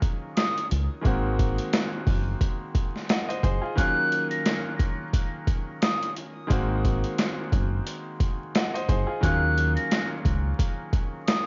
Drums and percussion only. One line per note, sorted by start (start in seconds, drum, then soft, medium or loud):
0.02 kick medium
0.02 closed hi-hat medium
0.37 snare loud
0.37 closed hi-hat loud
0.57 closed hi-hat medium
0.71 closed hi-hat medium
1.05 kick loud
1.05 closed hi-hat loud
1.39 kick medium
1.39 closed hi-hat medium
1.58 closed hi-hat medium
1.73 snare loud
1.73 closed hi-hat loud
2.07 kick loud
2.07 open hi-hat medium
2.41 kick loud
2.41 closed hi-hat medium
2.75 kick medium
2.75 closed hi-hat medium
2.96 snare soft
3.09 snare loud
3.09 closed hi-hat loud
3.30 closed hi-hat medium
3.43 kick medium
3.43 closed hi-hat medium
3.78 kick loud
3.78 closed hi-hat loud
4.12 closed hi-hat medium
4.31 closed hi-hat medium
4.46 snare loud
4.46 closed hi-hat loud
4.79 kick medium
4.79 closed hi-hat medium
5.13 kick loud
5.13 closed hi-hat medium
5.47 kick medium
5.47 closed hi-hat medium
5.82 snare loud
5.82 closed hi-hat loud
6.03 closed hi-hat medium
6.17 closed hi-hat medium
6.50 kick loud
6.50 closed hi-hat loud
6.85 kick medium
6.85 closed hi-hat medium
7.04 closed hi-hat medium
7.18 snare loud
7.18 closed hi-hat loud
7.52 kick medium
7.52 closed hi-hat medium
7.87 closed hi-hat medium
8.20 kick medium
8.20 closed hi-hat medium
8.55 snare loud
8.55 closed hi-hat loud
8.76 closed hi-hat medium
8.89 kick medium
8.89 closed hi-hat medium
9.23 kick loud
9.23 closed hi-hat loud
9.58 closed hi-hat medium
9.77 closed hi-hat medium
9.91 snare loud
9.91 closed hi-hat loud
10.25 kick loud
10.25 closed hi-hat medium
10.59 kick loud
10.59 closed hi-hat medium
10.93 kick loud
10.93 closed hi-hat medium
11.28 snare loud
11.28 closed hi-hat loud